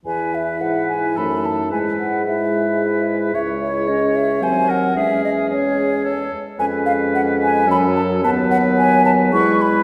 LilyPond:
<<
  \new Staff \with { instrumentName = "Flute" } { \time 3/4 \key e \major \tempo 4 = 110 gis''8 e''8 fis''8 gis''8 b''8 a''8 | gis''8 fis''8 e''4. r8 | e''8 cis''8 dis''8 e''8 gis''8 ges''8 | e''8 dis''8 cis''4. r8 |
gis''8 eis''8 fis''8 gis''8 b''8 a''8 | a''8 fis''8 gis''8 a''8 cis'''8 b''8 | }
  \new Staff \with { instrumentName = "Oboe" } { \time 3/4 \key e \major b'2 a'4 | b'4 b'2 | cis''2 c''8 ais'8 | gis'4 gis'4 a'8 r8 |
b'2 a'4 | b'2 b'4 | }
  \new Staff \with { instrumentName = "Clarinet" } { \time 3/4 \key e \major e'2 dis'4 | e'4 e'2 | e'4 cis'4 c'4 | cis'4 cis'4. r8 |
cis'2 cis'4 | b2 e'4 | }
  \new Staff \with { instrumentName = "French horn" } { \clef bass \time 3/4 \key e \major e2 a4 | gis4 gis2 | gis2 ges4 | gis4 gis4. r8 |
gis2 fis4 | fis2 gis4 | }
  \new Staff \with { instrumentName = "Bassoon" } { \clef bass \time 3/4 \key e \major e,4 gis,4 fis,4 | gis,2. | cis,2 ees,4 | e,2~ e,8 r8 |
eis,2 fis,4 | dis,2 e,4 | }
>>